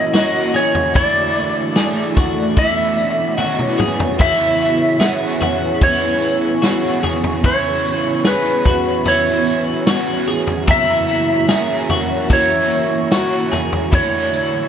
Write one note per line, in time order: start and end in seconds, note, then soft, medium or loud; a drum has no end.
0.00 0.13 E3 medium
0.00 0.13 A#3 medium
0.00 0.92 A#3 medium
0.00 0.14 C#4 medium
0.00 0.13 E4 medium
0.00 4.16 E4 medium
0.00 0.92 F#4 medium
0.00 0.16 A#4 medium
0.00 0.91 C#5 medium
0.00 0.58 D#5 loud
0.14 0.95 E3 medium
0.14 0.95 A#3 medium
0.14 0.96 C#4 medium
0.14 0.54 F#4 medium
0.14 0.96 A#4 medium
0.14 snare loud
0.14 tambourine loud
0.54 0.95 G#4 medium
0.54 0.96 C#5 loud
0.54 tambourine medium
0.75 floor tom medium
0.94 1.76 D3 medium
0.94 1.75 E3 medium
0.94 2.55 A3 medium
0.94 1.76 A3 medium
0.94 2.56 D4 medium
0.94 1.77 D4 medium
0.94 1.76 E4 loud
0.94 1.77 A4 medium
0.94 2.56 D5 medium
0.94 2.63 D5 loud
0.94 kick loud
0.94 floor tom loud
0.94 tambourine medium
1.36 tambourine medium
1.76 2.57 E3 medium
1.76 2.58 A3 medium
1.76 2.58 D4 medium
1.76 2.16 G#4 medium
1.76 2.59 A4 medium
1.76 snare loud
1.76 tambourine medium
2.17 2.56 F#4 medium
2.17 kick loud
2.17 floor tom medium
2.57 3.38 E3 medium
2.57 4.18 B3 medium
2.57 3.39 B3 medium
2.57 3.40 C#4 medium
2.57 3.38 E4 medium
2.57 4.18 F#4 medium
2.57 3.40 F#4 medium
2.57 4.18 C#5 medium
2.57 3.36 E5 medium
2.57 kick loud
2.57 floor tom medium
2.57 tambourine medium
2.98 tambourine medium
3.36 4.19 E3 medium
3.36 4.20 B3 medium
3.36 3.78 F#4 medium
3.36 3.76 D#5 medium
3.36 high tom medium
3.40 4.20 C#4 medium
3.40 4.21 F#4 medium
3.59 mid tom medium
3.78 4.19 G#4 medium
3.78 mid tom medium
4.00 floor tom medium
4.19 5.00 C#3 medium
4.19 4.99 E3 medium
4.19 10.65 B3 medium
4.19 5.00 B3 medium
4.19 5.02 C#4 medium
4.19 5.00 E4 loud
4.19 10.64 E4 medium
4.19 7.41 G#4 medium
4.19 5.01 G#4 medium
4.19 10.65 C#5 medium
4.19 5.88 E5 loud
4.19 kick loud
4.19 floor tom loud
4.19 crash medium
4.19 tambourine medium
4.61 tambourine medium
5.00 5.81 E3 medium
5.00 5.82 B3 medium
5.00 5.84 C#4 medium
5.00 5.40 G#4 medium
5.00 5.83 G#4 medium
5.00 5.80 F#5 medium
5.00 snare loud
5.00 tambourine medium
5.41 5.81 F#4 medium
5.41 floor tom medium
5.81 6.63 E3 medium
5.81 6.63 B3 medium
5.81 6.65 C#4 medium
5.81 6.62 E4 medium
5.81 6.64 G#4 medium
5.81 7.44 C#5 loud
5.81 kick loud
5.81 floor tom medium
5.81 tambourine medium
6.22 tambourine medium
6.62 7.44 E3 medium
6.62 7.44 B3 medium
6.62 7.45 C#4 medium
6.62 7.03 F#4 medium
6.62 7.45 G#4 medium
6.62 snare loud
6.62 tambourine medium
7.03 7.44 G#4 medium
7.03 floor tom medium
7.03 tambourine medium
7.24 floor tom medium
7.43 8.25 C#3 medium
7.43 8.24 E3 medium
7.43 8.25 B3 medium
7.43 8.26 C#4 medium
7.43 8.25 E4 loud
7.43 10.65 F#4 medium
7.43 8.26 G#4 medium
7.43 8.27 C#5 loud
7.43 kick loud
7.43 floor tom loud
7.43 tambourine medium
7.84 tambourine medium
8.25 9.05 E3 medium
8.25 9.06 B3 medium
8.25 9.07 C#4 medium
8.25 8.65 G#4 medium
8.25 9.08 G#4 medium
8.25 9.08 B4 medium
8.25 snare loud
8.25 tambourine medium
8.65 9.06 F#4 medium
8.65 kick medium
8.65 floor tom medium
9.05 9.86 E3 medium
9.05 9.86 B3 medium
9.05 9.89 C#4 medium
9.05 9.87 E4 medium
9.05 9.89 G#4 medium
9.05 10.25 C#5 medium
9.05 floor tom medium
9.05 tambourine medium
9.46 tambourine medium
9.87 10.69 E3 medium
9.87 10.68 B3 medium
9.87 10.70 C#4 medium
9.87 10.27 F#4 medium
9.87 10.70 G#4 medium
9.87 snare loud
9.87 tambourine medium
10.27 10.68 G#4 medium
10.27 tambourine medium
10.47 floor tom medium
10.68 11.49 F#2 medium
10.68 11.50 C#3 medium
10.68 11.49 E3 medium
10.68 13.89 A#3 medium
10.68 11.49 A#3 medium
10.68 11.51 C#4 medium
10.68 11.48 E4 loud
10.68 14.68 E4 medium
10.68 13.89 F#4 medium
10.68 11.50 A#4 medium
10.68 13.89 C#5 medium
10.68 12.37 E5 loud
10.68 11.49 A#5 medium
10.68 kick loud
10.68 floor tom loud
10.68 tambourine medium
11.08 tambourine medium
11.49 12.29 E3 medium
11.49 12.30 A#3 medium
11.49 12.31 C#4 medium
11.49 11.90 G#4 medium
11.49 12.32 A#4 medium
11.49 snare loud
11.49 tambourine medium
11.89 12.30 F#4 medium
11.89 floor tom medium
12.29 13.11 E3 medium
12.29 13.11 A#3 medium
12.29 13.12 C#4 medium
12.29 13.12 E4 medium
12.29 13.13 A#4 medium
12.29 13.90 C#5 loud
12.29 kick medium
12.29 floor tom medium
12.29 tambourine medium
12.71 tambourine medium
13.11 13.92 E3 medium
13.11 13.93 A#3 medium
13.11 13.93 C#4 medium
13.11 13.51 F#4 medium
13.11 13.94 A#4 medium
13.11 snare loud
13.11 tambourine loud
13.52 13.92 G#4 medium
13.52 floor tom medium
13.52 tambourine medium
13.73 floor tom medium
13.91 14.68 D3 medium
13.91 14.68 E3 medium
13.91 14.68 A3 medium
13.91 14.68 D4 medium
13.91 14.68 E4 loud
13.91 14.68 E5 medium
13.91 kick loud
13.91 floor tom loud
13.91 tambourine medium
13.95 14.68 A4 medium
13.95 14.68 C#5 medium
14.33 tambourine medium